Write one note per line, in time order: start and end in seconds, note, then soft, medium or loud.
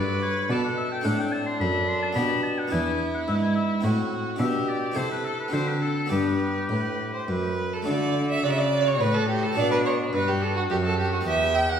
0.00 0.46 G2 soft
0.00 0.46 G2 medium
0.00 1.00 D4 soft
0.00 1.01 A4 soft
0.00 0.52 B4 medium
0.00 0.21 D5 medium
0.22 0.49 C#5 medium
0.50 1.01 B2 medium
0.50 1.02 B2 soft
0.50 1.07 A4 medium
0.50 0.63 D5 medium
0.64 0.77 F#5 medium
0.77 0.91 E5 medium
0.92 1.04 G5 medium
1.01 1.57 A2 medium
1.01 2.11 C4 soft
1.01 2.12 D4 medium
1.01 2.12 A4 soft
1.01 1.21 F#5 medium
1.06 1.57 A2 medium
1.06 2.71 D4 medium
1.19 1.33 G5 medium
1.32 1.46 A5 medium
1.46 1.59 C6 medium
1.60 2.12 F#2 medium
1.60 2.13 F#2 soft
1.60 1.90 B5 medium
1.88 2.02 C6 medium
2.03 2.09 A5 medium
2.13 2.68 B2 medium
2.13 2.66 B3 medium
2.13 2.67 D4 soft
2.13 2.71 G4 soft
2.13 2.42 B5 medium
2.17 2.69 B2 soft
2.43 2.60 A5 medium
2.58 2.73 F#5 medium
2.68 3.78 B3 soft
2.68 3.79 D4 soft
2.68 3.79 E4 soft
2.68 3.85 E4 medium
2.72 3.24 E2 soft
2.72 3.24 E2 medium
2.72 3.02 G#5 medium
3.14 3.21 F#5 medium
3.28 3.80 G#2 soft
3.28 3.80 G#2 medium
3.28 3.34 E5 medium
3.42 3.55 G#5 medium
3.55 3.83 E5 medium
3.81 4.36 A2 soft
3.81 4.36 A2 medium
3.81 4.36 C4 soft
3.81 4.37 E4 soft
3.81 4.39 F#4 medium
4.36 4.92 B2 medium
4.36 4.92 B2 soft
4.36 4.92 D4 soft
4.36 4.93 G4 soft
4.40 4.95 G4 medium
4.40 4.70 E5 medium
4.68 4.97 D5 medium
4.92 5.47 C4 soft
4.92 5.50 E4 soft
4.92 5.50 A4 soft
4.96 5.49 C3 soft
4.96 5.49 C3 medium
4.96 5.52 A4 medium
4.96 5.10 C5 medium
5.11 5.26 B4 medium
5.25 5.39 A4 medium
5.39 5.55 B4 medium
5.48 6.07 C4 soft
5.48 6.06 D4 soft
5.48 6.09 F#4 soft
5.53 6.07 D3 soft
5.53 6.07 D3 medium
5.53 6.13 A4 medium
5.53 5.69 C5 medium
5.68 5.81 B4 medium
5.81 6.10 A4 medium
6.06 6.65 B3 soft
6.06 6.66 D4 soft
6.06 7.82 G4 soft
6.11 6.65 G2 soft
6.11 6.66 G2 medium
6.11 7.54 G4 medium
6.11 6.64 B4 medium
6.69 7.24 A2 soft
6.69 7.24 A2 medium
6.69 7.11 B4 medium
7.14 7.28 C5 medium
7.28 7.83 F#2 medium
7.28 7.83 F#2 soft
7.28 7.75 B4 medium
7.73 7.86 A4 medium
7.82 8.40 A3 soft
7.82 9.52 D4 soft
7.82 9.53 F#4 soft
7.87 8.40 D3 medium
7.87 8.45 A4 medium
7.87 8.27 D5 medium
8.31 8.43 E5 medium
8.43 8.96 C#3 soft
8.43 9.03 C#3 medium
8.43 9.57 F#4 medium
8.43 8.52 D5 medium
8.52 8.60 E5 medium
8.59 8.88 D5 medium
8.87 9.02 C#5 medium
9.00 9.53 A2 medium
9.00 9.57 A2 medium
9.00 9.16 B4 medium
9.15 9.28 A4 medium
9.28 9.45 G4 medium
9.43 9.58 A4 medium
9.53 11.20 B3 soft
9.53 11.21 D4 soft
9.53 11.22 F#4 soft
9.53 9.71 D5 medium
9.58 10.10 B2 medium
9.58 10.13 B2 medium
9.58 10.16 D4 medium
9.71 9.77 B4 medium
9.86 9.94 C#5 medium
10.13 10.66 G2 soft
10.13 10.69 G2 medium
10.13 11.25 F#4 medium
10.13 10.30 B4 medium
10.28 10.43 G4 medium
10.42 10.56 A4 medium
10.57 10.62 F#4 medium
10.70 11.22 F#2 medium
10.70 11.25 F#2 medium
10.70 10.76 G4 medium
10.85 10.98 A4 medium
10.99 11.12 G4 medium
11.13 11.18 F#4 medium
11.21 11.78 B3 soft
11.21 11.80 G4 soft
11.25 11.78 E2 medium
11.25 11.80 E2 medium
11.25 11.80 G4 medium
11.25 11.57 E5 medium
11.55 11.71 G5 medium
11.70 11.80 F#5 medium